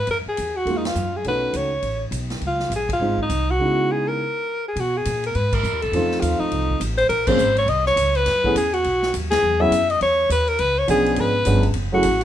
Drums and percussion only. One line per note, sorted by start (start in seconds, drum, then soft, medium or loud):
0.07 ride medium
0.37 hi-hat pedal soft
0.37 ride medium
0.67 ride soft
0.85 snare medium
0.85 ride medium
0.95 hi-hat pedal soft
1.24 ride soft
1.53 hi-hat pedal soft
1.53 ride medium
1.82 ride soft
2.12 hi-hat pedal medium
2.12 ride medium
2.30 snare soft
2.30 ride soft
2.41 ride soft
2.60 snare soft
2.72 hi-hat pedal soft
2.72 ride medium
2.89 kick medium
2.89 ride medium
3.18 kick soft
3.29 hi-hat pedal soft
3.29 ride medium
4.76 ride medium
5.05 hi-hat pedal medium
5.05 ride medium
5.24 ride soft
5.35 ride soft
5.53 kick medium
5.53 crash medium
5.64 hi-hat pedal medium
5.82 ride soft
5.93 ride medium
6.11 snare soft
6.22 hi-hat pedal medium
6.22 ride medium
6.51 ride medium
6.69 kick soft
6.81 hi-hat pedal medium
6.81 ride medium
6.98 ride soft
7.10 ride medium
7.27 kick medium
7.27 crash medium
7.38 hi-hat pedal medium
7.57 ride soft
7.68 ride medium
7.86 snare soft
7.97 hi-hat pedal medium
7.97 ride medium
8.15 ride soft
8.26 snare soft
8.26 ride medium
8.44 kick medium
8.56 hi-hat pedal medium
8.56 ride medium
8.74 ride soft
8.84 ride medium
9.03 snare soft
9.14 hi-hat pedal medium
9.14 ride medium
9.31 snare medium
9.31 ride medium
9.72 hi-hat pedal medium
9.72 ride medium
9.90 ride soft
10.01 ride medium
10.30 hi-hat pedal medium
10.30 ride medium
10.48 ride soft
10.59 ride medium
10.88 hi-hat pedal medium
10.88 ride medium
11.06 ride soft
11.16 ride medium
11.45 hi-hat pedal medium
11.45 ride medium
11.63 ride soft
11.74 ride medium
12.03 hi-hat pedal medium
12.03 ride medium
12.21 ride soft